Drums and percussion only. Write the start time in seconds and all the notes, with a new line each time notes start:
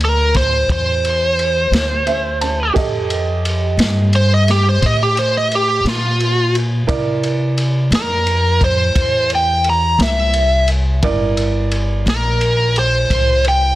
0.01 ride
0.34 kick, snare, ride
0.69 kick, ride
1.05 ride
1.39 ride
1.73 snare, ride
2.07 ride
2.41 ride
2.76 kick, ride
3.10 ride
3.45 ride
3.79 snare, ride
4.13 ride
4.48 snare, ride
4.82 kick, ride
5.17 ride
5.52 ride
5.86 snare, ride
6.20 ride
6.55 ride
6.89 kick, ride
7.23 ride
7.58 ride
7.92 snare, ride
8.27 ride
8.61 kick, ride
8.95 kick, ride
9.30 ride
9.64 ride
10.00 snare, ride
10.34 ride
10.68 ride
11.03 kick, ride
11.37 ride
11.72 ride
12.07 snare, ride
12.41 ride
12.76 ride
13.10 kick, ride
13.45 ride